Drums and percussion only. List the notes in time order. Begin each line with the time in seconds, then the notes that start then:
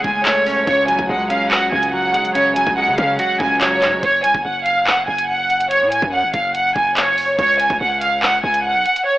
0.04 kick
0.25 clap, closed hi-hat
0.46 open hi-hat
0.67 kick, closed hi-hat
0.88 closed hi-hat
0.99 kick
1.30 closed hi-hat
1.51 clap
1.83 closed hi-hat
2.14 closed hi-hat
2.25 closed hi-hat
2.35 closed hi-hat
2.56 closed hi-hat
2.67 kick
2.98 kick, closed hi-hat
3.19 closed hi-hat
3.40 kick
3.61 clap, closed hi-hat
3.82 clap, closed hi-hat
4.03 kick, closed hi-hat
4.24 closed hi-hat
4.34 kick
4.66 closed hi-hat
4.87 clap
5.18 closed hi-hat
5.50 closed hi-hat
5.61 closed hi-hat
5.71 closed hi-hat
5.92 closed hi-hat
6.02 kick
6.34 kick, closed hi-hat
6.55 closed hi-hat
6.76 kick
6.97 clap, closed hi-hat
7.18 open hi-hat
7.39 kick, closed hi-hat
7.60 closed hi-hat
7.70 kick
8.01 closed hi-hat
8.23 clap
8.54 closed hi-hat
8.86 closed hi-hat
8.96 closed hi-hat